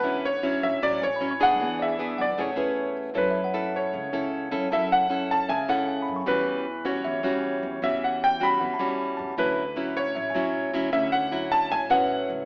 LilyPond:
<<
  \new Staff \with { instrumentName = "Tine electric piano" } { \time 4/4 \key a \major \tempo 4 = 154 <fis'' a''>8. r4. r16 gis''16 b''16 cis'''4~ | cis'''8 d''4 fis''4 b'4. | \key fis \minor cis''16 e''16 fis''2 r4. | a''2 e''4 gis''16 b''16 cis'''8~ |
cis'''4 r4 e''2 | r2 fis''16 a''16 b''4 a''8~ | a''8 r4. e''16 gis''4.~ gis''16~ | gis''16 r2 r16 b'16 e''4~ e''16 | }
  \new Staff \with { instrumentName = "Grand piano" } { \time 4/4 \key a \major b'8 cis''4 e''8 d''8 cis''4 fis''8~ | fis''8 e''4 d''8 cis''4. r8 | \key fis \minor b'4. cis''2 r8 | e''8 fis''4 a''8 gis''8 fis''4 r8 |
b'4. cis''2~ cis''8 | e''8 fis''8 g''8 b''4. r4 | b'4. cis''2 r8 | e''8 fis''4 a''8 gis''8 fis''4 r8 | }
  \new Staff \with { instrumentName = "Nylon-string guitar" } { \time 4/4 \key a \major << { <fis cis' e'>8 r8 <fis cis' e'>4 <fis cis' e'>8 r8 <fis cis' e'>8 <b d' gis'>8~ | <b d' gis'>4 <b d' gis'>8 r8 <cis' e' gis'>8 <cis' e' gis'>4. | \key fis \minor <cis' e' a'>8 r8 <cis' e' a'>4. <cis' e' a'>4 <cis' e' a'>8 | <cis' e' a'>4 <cis' e' a'>4 r8 <cis' e' a'>4. |
<g cis' fis'>4 r8 <g cis' fis'>4 <g cis' fis'>4. | <g cis' fis'>4. <g cis' fis'>4 <g cis' fis'>4. | <fis cis' e'>8 r8 <fis cis' e'>4. <fis cis' e'>4 <fis cis' e'>8 | <fis cis' e'>4 <fis cis' e'>4. <fis cis' e'>4. | } \\ { d2 a,2 | e2 a2 | fis2 cis2 | fis2 cis2 |
e2 e2 | e2 e2 | d2 a,2 | d2 a,2 | } >> }
  \new Staff \with { instrumentName = "Upright bass" } { \clef bass \time 4/4 \key a \major d,4. a,,8 a,,8 a,,4. | e,4. b,,8 a,,8 e,4. | \key fis \minor fis,2 cis,8 cis,4 fis,8 | fis,2 cis,8 cis,4 fis,8 |
e,2 e,8 e,4 e,8 | e,2 e,8 e,4 e,8 | d,2 a,,8 a,,4 d,8 | d,2 a,,8 a,,4 cis,8 | }
>>